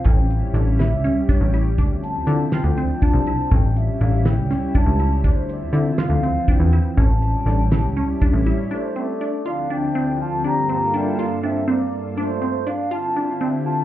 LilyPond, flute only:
\new Staff \with { instrumentName = "Flute" } { \time 7/8 \key d \minor \tempo 4 = 121 g''4 r8 e''4 cis''8. r16 | r8 a''4 g''4 a''4 | g''8 e''8 f''8 g''4 a''8. r16 | c''8 d''8 e''8 f''4 g''4 |
a''2~ a''8 r4 | c''8 d''4 f''8 g''4 a''8 | bes''8 bes''8 g''8 f''8 e''8 d''8. r16 | c''4 f''8 a''4 g''8 a''8 | }